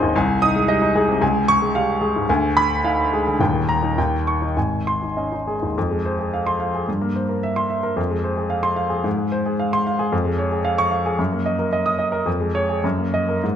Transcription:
grand piano
Already playing: G#1 C4 C#4 D#4 G#4 D#5 G#5 C6
0.02 D#2
0.16 C2 G#5
0.42 D#4 D#6
0.55 G#3
0.68 G3 D#5
0.82 D#4
0.95 G#3 G#4
1.09 C3
1.21 C#2 G#5
1.48 C#6
1.62 G#3
1.75 G3 F5
2.01 G#3 G#4
2.16 G#2
2.29 D2 G#5
2.57 B5
2.84 D#4 F5
3.13 G#3 G#4
3.27 D3
3.39 D#1 D#2 G5
3.69 A#5
3.83 D#4
3.98 D#2 G5
4.27 C#6
4.42 D#4
4.57 G#1 G#5
4.87 C6
5.03 D#4
5.17 C#4 D#5
5.32 D#4
5.47 G#3 G#4
5.63 D#2
5.78 F2
5.91 G#3
6.06 C5
6.19 G#4
6.34 F5
6.47 C6
6.60 F5
6.74 G#4
6.88 G2
7.01 A#3
7.16 C5
7.29 A#4
7.43 E5
7.56 C6
7.70 E5
7.83 A#4
7.96 F2
8.10 G#3
8.24 C5
8.37 G#4
8.50 F5
8.63 C6
8.76 F5
8.90 G#4
9.04 G#2
9.18 G#3
9.32 C5
9.46 G#4
9.59 F5
9.73 C6
9.87 F5
9.99 G#4
10.12 F2
10.25 G#3
10.38 C#5
10.52 G#4
10.65 F5
10.78 C#6
10.91 F5
11.06 G#4
11.19 F#2
11.32 A#3
11.46 D#5
11.59 A#4
11.73 D#5
11.86 D#6
11.99 D#5
12.12 A#4
12.26 F2
12.40 G#3
12.55 C#5
12.69 G#4
12.84 F#2
12.98 A#3
13.14 D#5
13.29 A#4
13.43 G#2

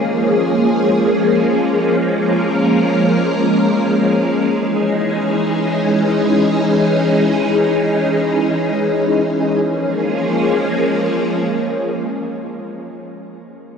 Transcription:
string machine
Already playing: F3 G#3 A#3 C#4 G#4
1.88 A#4
4.46 E3 C#4 D#4 G#4
9.62 F3 G#3 A#3 C#4 G#4

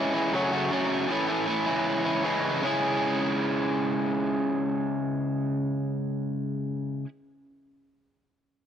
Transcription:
overdriven electric guitar
Already playing: E3 G#3 C#4 E4
0.14 G#3 C#4 E4
0.33 F#2 C#3 F#3 A3 C#4 F#4
0.52 F#3 A3 C#4 F#4
0.71 F#2 C#3 F#3 A3 C#4 F#4
1.08 A2 E3 A3 C#4 E4
1.28 A3 C#4 E4
1.47 E3 A3 C#4 E4
1.66 C#3 E3 G#3 C#4 E4
2.05 G#3 C#4 E4
2.23 C#3 E3 G#3 C#4 E4
2.61 C#3 G#3 C#4 E4
2.66 G#4

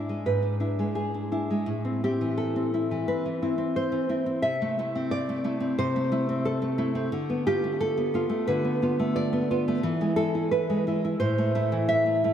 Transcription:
nylon-string guitar
Already playing: G#2 D4 E4 D5
0.09 G#3
0.26 G#2 B4
0.42 D4
0.60 D4 E4
0.79 G#3
0.95 G#4
1.14 D4
1.32 D4 E4
1.50 G#3
1.66 A2
1.85 C4
2.04 C4 E4 G4
2.21 E3
2.37 A4
2.56 C4
2.74 C4 E4
2.91 E3
3.08 C4 B4
3.25 E3
3.42 C4 E4
3.58 C4
3.76 C5
3.92 E3
4.09 C4 E4
4.26 C4
4.42 C3 E5
4.62 A3
4.79 A3 E4
4.95 C4
5.11 D5
5.29 A3
5.44 A3 E4
5.60 C4
5.78 C3 C5
5.96 A3
6.12 A3 E4
6.29 C4
6.45 A4
6.62 A3
6.78 A3 E4
6.95 C4
7.12 D3
7.30 B3
7.47 B3 F4 G4
7.64 A3
7.81 A4
7.98 B3
8.14 B3 F4
8.29 A3
8.47 D3 B4
8.65 B3
8.82 B3 F4
8.99 A3
9.16 D5
9.33 B3
9.51 B3 F4
9.68 A3
9.83 E3
10.01 G#3
10.16 G#3 E4 A4
10.35 E4
10.51 B4
10.70 G#3
10.87 G#3 E4
11.04 E4
11.20 A2 C5
11.38 A3
11.55 A3 E4
11.72 E3
11.89 E5
12.06 A3
12.24 A3 E4

